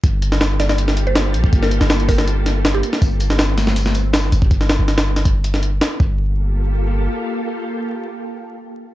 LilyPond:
<<
  \new Staff \with { instrumentName = "Synth pluck" } { \time 4/4 \key g \minor \tempo 4 = 161 r4. d''16 d''16 r8. c''4~ c''16~ | c''16 bes'8 r8. bes'16 bes'16 r4 r16 g'8. | r1 | r1 |
r1 | r1 | }
  \new Staff \with { instrumentName = "String machine" } { \time 4/4 \key g \minor << { <f' g' a'>1~ | <f' g' a'>1~ | <f' g' a'>1 | r1 |
<bes f' g' a'>1~ | <bes f' g' a'>1 | } \\ { bes1~ | bes1 | c'1 | r1 |
r1 | r1 | } >> }
  \new Staff \with { instrumentName = "808-style bass" } { \clef bass \time 4/4 \key g \minor g,,2.~ g,,8 bes,,8 | g,,8. g,,2~ g,,8. r8 | g,,2.~ g,,8 g,,8 | g,,8. g,,2~ g,,8. r8 |
g,,2. r4 | r1 | }
  \new DrumStaff \with { instrumentName = "Drums" } \drummode { \time 4/4 <hh bd>8 hh16 sn16 <hh sn>8 <hh sn>16 sn16 hh16 sn16 hh8 <hh sn>8 hh16 bd16 | <hh bd>16 sn16 hh16 sn16 <hh sn>16 hh16 <hho bd>16 sn16 hh8 <hh sn>8 <hh sn>8 hh16 sn16 | <hh bd tamb>8 <hh tamb>16 sn16 <hh sn tamb>8 <hh sn tamb>16 sn16 <hh tamb>16 sn16 <hh tamb>8 <hh sn tamb>16 sn16 <hh tamb>16 bd16 | <hh bd>16 sn16 <hh sn>8 <hh sn>16 <hh sn>8 <hh sn>16 <hh bd>8 hh16 sn16 hh8 <hh sn>8 |
bd4 r4 r4 r4 | r4 r4 r4 r4 | }
>>